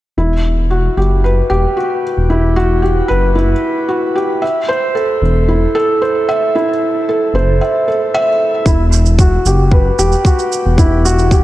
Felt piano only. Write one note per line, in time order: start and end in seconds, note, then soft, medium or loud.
0.18 0.33 E4 medium
0.70 0.96 F#4 medium
0.97 1.22 G4 medium
1.24 1.49 B4 medium
1.50 1.75 G4 medium
1.77 2.02 F#4 medium
2.30 2.55 E4 medium
2.56 2.81 F#4 medium
2.82 3.08 G4 medium
3.08 3.34 B4 medium
3.35 3.51 E4 medium
3.89 4.14 F#4 medium
4.16 4.41 G4 medium
4.42 4.67 E5 medium
4.69 4.94 C5 medium
4.95 5.20 A4 medium
5.48 5.74 E4 medium
5.75 6.00 A4 medium
6.02 6.27 C5 medium
6.29 6.53 E5 medium
6.55 6.70 E4 medium
7.09 7.33 A4 medium
7.35 7.60 C5 medium
7.61 7.86 E5 medium
7.88 8.13 A4 medium
8.14 8.29 E5 medium
8.67 8.82 E4 medium
9.20 9.45 F#4 medium
9.47 9.72 G4 medium
9.72 9.98 B4 medium
9.99 10.24 G4 medium
10.26 10.51 F#4 medium
10.79 11.04 E4 medium
11.05 11.31 F#4 medium
11.32 11.44 G4 medium